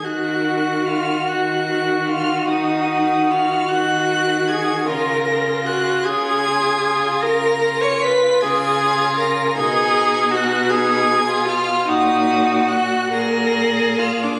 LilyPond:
<<
  \new Staff \with { instrumentName = "Violin" } { \time 12/8 \key ees \minor \tempo 4. = 50 ges'''4 f'''8 ges'''4 f'''8 ees'''4 f'''8 ges'''4 aes'''8 | bes'''4 ges'''8 aes'''4. bes'''8. des''''16 ces''''8 aes'''4 bes'''8 | aes'''4 ges'''8 aes'''4 f'''8 ees'''4 ges'''8 bes'''4 f'''16 d'''16 | }
  \new Staff \with { instrumentName = "Viola" } { \time 12/8 \key ees \minor ges'4 f'8 ges'4 f'8 ees'4 f'8 ges'4 aes'8 | bes'4 ges'8 aes'4. bes'8. des''16 ces''8 aes'4 bes'8 | aes'4 ges'8 aes'4 f'8 ees'4 ges'8 bes'4 f'16 d'16 | }
  \new Staff \with { instrumentName = "Violin" } { \time 12/8 \key ees \minor r8 ges'4. ges'4. ges'4. ges'4 | f'8 f'4. f'4. f'4. f'4 | ees'4. ees'8. f'8. ges'4. aes'4. | }
  \new Staff \with { instrumentName = "Cello" } { \clef bass \time 12/8 \key ees \minor ees4. ees4. ees4. ees4. | des4. des4. des4. des4. | ces2. bes,4. bes,4. | }
>>